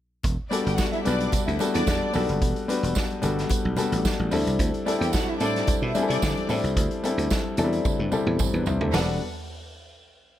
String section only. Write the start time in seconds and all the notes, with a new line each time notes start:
0.50 D4 D5
0.66 G4 G5
0.78 F#4 F#5
0.92 E4 E5
1.05 D4 D5
1.46 E4 E5
1.73 D4 D5
4.86 D4 D5
5.00 G4 G5
5.13 F#4 F#5
5.28 E4 E5
5.40 D4 D5
5.82 E4 E5
6.09 D4 D5
8.93 D4 B4 F#5